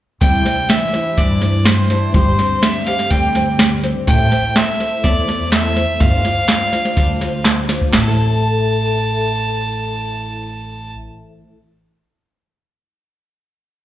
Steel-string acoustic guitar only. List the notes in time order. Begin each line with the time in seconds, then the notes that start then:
0.22 C3 E4
0.46 D4
0.70 E3
0.95 E4
1.19 D4
1.42 G2
1.67 G3
1.92 D4
2.14 G2 G4
2.40 C4
2.63 D3
2.87 G4
3.12 C4
3.35 G2
3.60 G3
3.84 C4